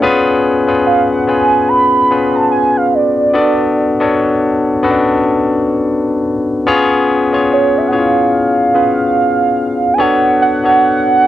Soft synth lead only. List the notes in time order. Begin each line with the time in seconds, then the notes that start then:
0.87 F5
1.11 F#5
1.28 G#5
1.69 B5
2.35 A5
2.52 G#5
2.77 F5
2.95 D5
7.53 C#5
7.78 E5
7.87 F#5
7.95 F5
9.94 G#5
10.01 F#5
10.42 F#5